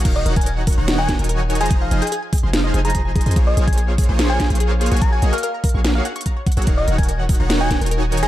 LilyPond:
<<
  \new Staff \with { instrumentName = "Soft synth lead" } { \time 4/4 \key ees \dorian \tempo 4 = 145 r16 ees''8 aes''8 r4 aes''8 r4 aes''16 | aes''16 f''8 aes''8 r4. bes''4~ bes''16 | r16 ees''8 aes''8 r4 aes''8 r4 r16 | bes''16 aes''8 f''16 f''16 r2 r8. |
r16 ees''8 aes''8 r4 aes''8 r4 aes''16 | }
  \new Staff \with { instrumentName = "Synth arpeggio sound" } { \time 4/4 \key ees \dorian bes'16 ees''16 bes'16 bes'16 bes'16 ges''16 bes'16 bes''16 bes'16 ees''16 bes'16 bes'16 bes'16 ges''16 bes'16 bes''16 | aes'16 ees''16 aes'16 aes'16 aes'16 aes''16 aes'16 c'''16 aes'16 ees''16 aes'16 aes'16 aes'16 aes''16 aes'16 c'''16 | aes'16 c''16 aes'16 aes'16 aes'16 f''16 aes'16 aes''16 aes'16 c''16 aes'16 aes'16 aes'16 f''16 aes'16 aes''16 | bes'16 f''16 bes'16 bes'16 bes'16 bes''16 bes'16 des'''16 bes'16 f''16 ges''16 des'''16 bes''16 des''16 ges''16 e'''16 |
bes'16 ees''16 bes'16 bes'16 bes'16 ges''16 bes'16 bes''16 bes'16 ees''16 bes'16 bes'16 bes'16 ges''16 bes'16 bes''16 | }
  \new Staff \with { instrumentName = "Supersaw synth" } { \time 4/4 \key ees \dorian <ees ees' ges' des'' f''>8 <ees ees' ges' des'' ges''>4~ <ees ees' ges' des'' ges''>16 <ees ees' ges' des'' ges''>4 <ees ees' ges' des'' aes''>4 <f ees' aes' c'' bes''>16~ | <f ees' aes' c'' bes''>8 <f ees' aes' c'' ees''>16 r4 <f ees' aes' c'' f''>8. <f ees' aes' c'' aes''>4~ <f ees' aes' c'' aes''>16 <f ees' aes' c'' aes''>16 | <bes f' aes' c'' des''>8 <bes f' aes' c'' des''>4~ <bes f' aes' c'' des''>16 <bes f' aes' c'' des''>4 <bes f' aes' c'' des''>4 <bes ges' aes' des'' aes''>16~ | <bes ges' aes' des'' aes''>8 <bes ges' aes' des'' ees''>16 r4 <bes ges' aes' des'' f''>8. r4 r16 <bes ges' aes' des'' ges''>16 |
<ees ees' ges' des'' f''>8 <ees ees' ges' des'' ges''>4~ <ees ees' ges' des'' ges''>16 <ees ees' ges' des'' ges''>4 <ees ees' ges' des'' aes''>4 <f ees' aes' c'' bes''>16 | }
  \new Staff \with { instrumentName = "808-style bass" } { \clef bass \time 4/4 \key ees \dorian ees,,8 ees,,4~ ees,,16 ees,,4 ees,,4 f,,16~ | f,,8 f,,16 r4 f,,8. f,,4~ f,,16 f,16 | bes,,8 bes,,4~ bes,,16 bes,,4 bes,,4 bes,,16~ | bes,,8 bes,,16 r4 bes,,8. r4 r16 bes,,16 |
ees,,8 ees,,4~ ees,,16 ees,,4 ees,,4 f,,16 | }
  \new DrumStaff \with { instrumentName = "Drums" } \drummode { \time 4/4 <cymc hh bd>8 hh16 <hh bd>32 hh32 hh8 <hho bd>32 hh16. <hh sn>8 <hh bd sn>16 hh32 hh32 hh8 hh32 hh32 hh32 hh32 | <hh bd>8 hh16 hh32 hh32 hh8 <hho bd>32 hh16. <hh sn>8 hh16 hh32 hh32 <hh bd>8 <hh bd>32 hh32 hh32 hh32 | <hh bd>8 hh16 <hh bd>32 hh32 hh8 <hho bd>32 hh16. <hh sn>8 <hh bd sn>16 hh32 hh32 hh8 hh32 hh32 hh32 hh32 | <hh bd>8 hh16 hh32 hh32 hh8 <hho bd>32 hh16. <hh sn>8 hh16 hh32 hh32 <hh bd>8 <hh bd>32 hh32 hh32 hh32 |
<hh bd>8 hh16 <hh bd>32 hh32 hh8 <hho bd>32 hh16. <hh sn>8 <hh bd sn>16 hh32 hh32 hh8 hh32 hh32 hh16 | }
>>